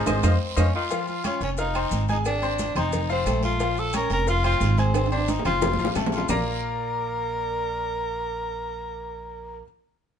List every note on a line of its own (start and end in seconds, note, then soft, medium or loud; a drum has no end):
0.00 0.31 F3 medium
0.06 0.19 G#1 loud
0.06 0.54 C4 medium
0.06 0.17 G#4 loud
0.06 0.18 C5 loud
0.06 0.18 D#5 medium
0.06 cowbell loud
0.06 high conga loud
0.06 high timbale loud
0.06 long guiro medium
0.06 claves loud
0.06 maracas loud
0.23 0.36 F2 medium
0.23 0.34 C5 loud
0.23 0.34 D#5 medium
0.23 0.34 F5 medium
0.23 cowbell loud
0.23 high conga medium
0.23 high timbale loud
0.23 long guiro loud
0.23 claves loud
0.23 maracas loud
0.56 0.70 F2 loud
0.56 0.73 C#4 medium
0.56 0.68 C5 medium
0.56 0.68 D#5 medium
0.56 0.68 F5 loud
0.56 cowbell loud
0.56 high conga loud
0.56 high timbale loud
0.56 long guiro loud
0.56 claves loud
0.56 maracas loud
0.74 0.83 D#3 medium
0.74 1.06 F4 medium
0.90 1.18 F3 medium
0.90 1.19 F4 medium
0.90 1.19 F5 medium
0.90 cowbell loud
0.90 high conga soft
0.90 low agogo medium
0.90 long guiro medium
0.90 maracas medium
1.07 1.24 F4 medium
1.07 high conga soft
1.07 maracas soft
1.24 1.52 C#4 medium
1.24 1.41 F4 medium
1.24 1.52 C#5 medium
1.24 1.52 C#6 medium
1.24 cowbell medium
1.24 high conga loud
1.24 low agogo loud
1.24 short guiro medium
1.24 claves medium
1.24 maracas medium
1.41 1.88 F1 loud
1.41 1.50 C#4 medium
1.41 cowbell medium
1.41 high conga soft
1.41 low agogo medium
1.41 short guiro medium
1.41 maracas soft
1.57 2.06 D#4 medium
1.57 1.72 F4 medium
1.57 1.72 F5 medium
1.57 1.72 F6 medium
1.57 cowbell loud
1.57 high conga soft
1.57 long guiro medium
1.57 maracas medium
1.75 2.03 C4 medium
1.75 2.03 C5 medium
1.75 2.03 C6 medium
1.75 high conga soft
1.75 low agogo loud
1.75 claves medium
1.75 maracas soft
1.91 2.70 G#1 medium
1.91 cowbell medium
1.91 high conga medium
1.91 short guiro medium
1.91 maracas medium
2.08 2.18 D#4 medium
2.08 2.36 G#4 medium
2.08 2.37 G#5 medium
2.08 2.37 G#6 medium
2.08 cowbell medium
2.08 high conga medium
2.08 short guiro medium
2.08 maracas soft
2.25 2.73 D4 loud
2.25 cowbell loud
2.25 low agogo loud
2.25 long guiro medium
2.25 claves medium
2.25 maracas medium
2.42 2.70 C4 medium
2.42 2.70 C5 medium
2.42 2.70 C6 medium
2.42 high conga soft
2.42 low agogo medium
2.42 maracas soft
2.59 cowbell medium
2.59 high conga loud
2.59 short guiro medium
2.59 maracas medium
2.75 3.23 F1 loud
2.75 3.04 C4 medium
2.75 3.08 D#4 loud
2.75 3.04 C5 medium
2.75 3.04 C6 medium
2.75 cowbell medium
2.75 high conga soft
2.75 low conga medium
2.75 low agogo loud
2.75 short guiro medium
2.75 claves medium
2.75 maracas soft
2.92 cowbell loud
2.92 high conga soft
2.92 low conga medium
2.92 low agogo medium
2.92 long guiro medium
2.92 maracas medium
3.09 3.23 F3 loud
3.09 3.42 C4 medium
3.09 3.23 F4 loud
3.09 3.24 F5 loud
3.09 high conga soft
3.09 maracas soft
3.26 4.05 A#1 loud
3.26 3.54 A3 medium
3.26 3.54 A4 medium
3.26 3.54 A5 medium
3.26 cowbell medium
3.26 high conga medium
3.26 low agogo loud
3.26 short guiro medium
3.26 claves medium
3.26 maracas medium
3.43 3.81 F4 loud
3.43 cowbell medium
3.43 high conga medium
3.43 short guiro medium
3.43 maracas soft
3.59 3.88 F3 medium
3.59 3.88 F4 medium
3.59 3.88 F5 medium
3.59 cowbell loud
3.59 high conga soft
3.59 low agogo medium
3.59 long guiro medium
3.59 maracas medium
3.77 3.95 A4 loud
3.77 high conga soft
3.77 maracas soft
3.93 4.21 C#4 medium
3.93 4.11 A#4 loud
3.93 4.22 C#5 medium
3.93 4.22 C#6 medium
3.93 cowbell medium
3.93 high conga loud
3.93 low agogo loud
3.93 short guiro medium
3.93 claves medium
3.93 maracas medium
4.10 4.57 F1 loud
4.10 4.27 A#4 loud
4.10 cowbell medium
4.10 high conga soft
4.10 low agogo medium
4.10 short guiro medium
4.10 maracas soft
4.27 4.41 F4 medium
4.27 4.44 F4 loud
4.27 4.42 F5 medium
4.27 4.42 F6 medium
4.27 cowbell loud
4.27 high conga soft
4.27 long guiro medium
4.27 maracas medium
4.44 4.72 C4 medium
4.44 4.80 F4 loud
4.44 4.72 C5 medium
4.44 4.72 C6 medium
4.44 high conga soft
4.44 low agogo loud
4.44 claves medium
4.44 maracas soft
4.60 5.39 G#1 loud
4.60 cowbell medium
4.60 high conga medium
4.60 low timbale medium
4.60 short guiro medium
4.60 maracas medium
4.78 4.95 C4 medium
4.78 5.06 G#4 medium
4.78 5.06 G#5 medium
4.78 5.06 G#6 medium
4.78 cowbell medium
4.78 high conga medium
4.78 short guiro medium
4.78 maracas soft
4.94 5.11 C4 loud
4.94 cowbell loud
4.94 high conga soft
4.94 high timbale loud
4.94 low agogo loud
4.94 long guiro medium
4.94 claves medium
4.94 maracas medium
5.06 high timbale medium
5.11 5.39 C4 medium
5.11 5.31 D4 medium
5.11 5.39 C5 medium
5.11 5.40 C6 medium
5.11 high conga soft
5.11 low agogo medium
5.11 maracas soft
5.18 high timbale medium
5.28 5.45 D#4 loud
5.28 cowbell medium
5.28 high conga loud
5.28 high timbale medium
5.28 short guiro medium
5.28 maracas medium
5.39 low timbale medium
5.45 5.76 F1 loud
5.45 5.73 C4 medium
5.45 5.93 F4 medium
5.45 5.73 C5 medium
5.45 5.73 C6 medium
5.45 cowbell medium
5.45 high conga soft
5.45 low conga medium
5.45 low agogo loud
5.45 short guiro medium
5.45 claves medium
5.45 maracas soft
5.61 cowbell loud
5.61 high bongo loud
5.61 high conga soft
5.61 low conga medium
5.61 low timbale loud
5.61 low agogo medium
5.61 long guiro medium
5.61 maracas medium
5.73 high bongo medium
5.73 low timbale medium
5.78 5.94 A1 medium
5.78 5.93 F3 medium
5.78 5.93 F4 medium
5.78 5.93 F5 medium
5.78 high conga soft
5.78 maracas soft
5.85 high bongo loud
5.85 low timbale loud
5.95 6.26 A#1 medium
5.95 6.24 A3 medium
5.95 6.24 A4 medium
5.95 6.24 A5 medium
5.95 cowbell medium
5.95 low bongo medium
5.95 high conga medium
5.95 low agogo loud
5.95 short guiro medium
5.95 claves medium
5.95 maracas medium
6.06 low bongo medium
6.06 low timbale loud
6.12 6.29 F4 medium
6.12 cowbell medium
6.12 short guiro medium
6.12 maracas soft
6.18 low bongo medium
6.18 low timbale medium
6.29 9.61 A#1 medium
6.29 9.61 A#3 medium
6.29 9.61 F4 medium
6.29 9.62 A#4 medium
6.29 9.62 D5 medium
6.29 9.62 F5 medium
6.29 9.62 A#5 loud
6.29 low bongo loud
6.29 low conga loud
6.29 low timbale medium
6.29 long guiro medium
6.29 claves loud
6.29 maracas loud